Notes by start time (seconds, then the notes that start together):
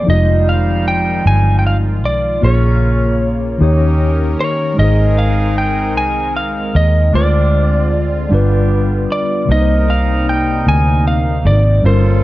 0.03 F3 G3 C4 D#4
0.07 F1 D#3 D#4 F4 D#5
0.13 G#3
0.49 F5
0.88 G5
1.26 G1 G#5
1.59 G5
1.67 F5
2.04 B1 D5
2.42 A#1 C#3 A#3 C#4 F4 G#4 C#5
2.46 C#5
3.58 D#2 D#3 C#4 D#4 G4 A#4
3.63 C#5
4.41 C#5
4.74 G#3 C4 D#4
4.78 G#1 C4 D#4 G#4 D#5
4.84 C5
5.18 F5
5.58 G5
5.96 C2 G#5
6.37 F5
6.75 D#2 D#5
7.12 D2 D3 G#3 C4 D4 F4 D5
7.17 B4
7.23 C5
8.29 G1 G3 B3 D4 F4 G4
8.34 B4
9.12 D5
9.45 C2 C3 G3 A#3 C4 D#4 A#4
9.52 D#4 C5 D#5
9.61 C5
9.90 F5
10.29 G5
10.67 D2 G#5
11.08 F5
11.45 G#1 D5
11.82 G1 C#3 G3 C#4 F4 A4
11.86 A#4 C5